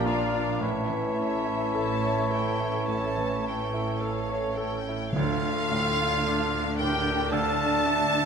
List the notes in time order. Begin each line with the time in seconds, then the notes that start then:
Already playing: A#1 A#2 F3 A#3 D4 F4 A#4 D5 A#5
0.05 D4 F4 D5 F5
0.33 D4
0.59 A1 A2 E3 A3 C#4 E4 C#5 E5 A5
0.89 E3
1.18 C#4 A4 E5
1.45 E4
1.75 A1 A2 A4 A5
2.04 C#5
2.31 C#4 A4 G5
2.60 E4
2.88 A1 A2 A5
3.17 E3
3.45 C#4 A4 G5
3.74 E4
4.01 A1 A2 A4 F5
4.29 C#5
4.55 C#4 A4 G5
4.88 E4
5.11 D2 D3 A3 D4 A4 F5
5.16 D2 F4
5.71 A2
6.28 D4
6.77 A2 G4 A#4 G5
7.31 D2 A4 D5 F5 A5
7.85 D4 E5